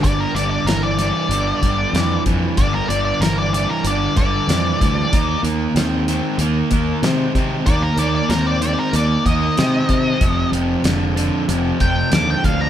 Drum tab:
HH |xxxxxxxx|xxxxxxxx|xxxxxxxx|xxxxxxxx|
SD |--o---o-|--o---o-|--o---o-|--o---o-|
BD |o----o-o|o----o-o|o----o-o|o----o-o|

HH |xxxxxxxx|
SD |--o---o-|
BD |o----o-o|